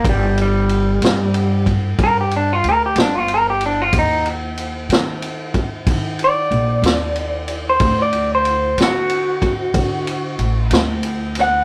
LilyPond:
<<
  \new Staff \with { instrumentName = "Clean electric guitar" } { \time 12/8 \key g \minor \tempo 4. = 62 g8 g2 r8 bes'16 g'16 d'16 f'16 bes'16 g'16 d'16 f'16 bes'16 g'16 d'16 f'16 | ees'8 r2. d''2~ d''16 c''16~ | c''16 d''8 c''8. fis'2. r4 fis''8 | }
  \new Staff \with { instrumentName = "Upright bass" } { \clef bass \time 12/8 \key g \minor g,,4. g,4. g,4 d,8 g,,4. | ees,4. ees4. ees4 bes,,8 ees,4. | d,4. d4. d4 a,,8 d,4. | }
  \new DrumStaff \with { instrumentName = "Drums" } \drummode { \time 12/8 <bd cymr>8 cymr8 cymr8 <cymr sn>8 cymr8 <bd cymr>8 <bd cymr>8 cymr8 cymr8 <cymr sn>8 cymr8 cymr8 | <bd cymr>8 cymr8 cymr8 <cymr sn>8 cymr8 <bd cymr>8 <bd cymr>8 cymr8 cymr8 <cymr sn>8 cymr8 cymr8 | <bd cymr>8 cymr8 cymr8 <cymr sn>8 cymr8 <bd cymr>8 <bd cymr>8 cymr8 cymr8 <cymr sn>8 cymr8 <cymr sn>8 | }
>>